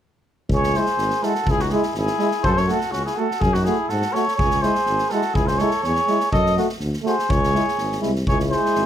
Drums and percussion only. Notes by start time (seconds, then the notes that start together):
0.49 kick
0.63 snare
0.74 snare
0.86 snare
0.98 snare
1.10 snare
1.23 snare
1.35 snare
1.47 kick
1.59 snare
1.69 snare
1.83 snare
1.94 snare
2.07 snare
2.19 snare
2.31 snare
2.44 kick
2.57 snare
2.68 snare
2.81 snare
2.93 snare
3.07 snare
3.31 snare
3.42 kick
3.54 snare
3.65 snare
3.89 snare
4.02 snare
4.15 snare
4.28 snare
4.39 kick
4.51 snare
4.63 snare
4.75 snare
4.86 snare
4.98 snare
5.10 snare
5.22 snare
5.35 kick
5.48 snare
5.58 snare
5.71 snare
5.84 snare
5.95 snare
6.07 snare
6.20 snare
6.33 kick
6.46 snare
6.57 snare
6.69 snare
6.80 snare
6.93 snare
7.06 snare
7.19 snare
7.30 kick
7.43 snare
7.55 snare
7.68 snare
7.78 snare
7.92 snare
8.03 snare
8.15 snare
8.27 kick
8.40 snare
8.52 snare
8.65 snare
8.75 snare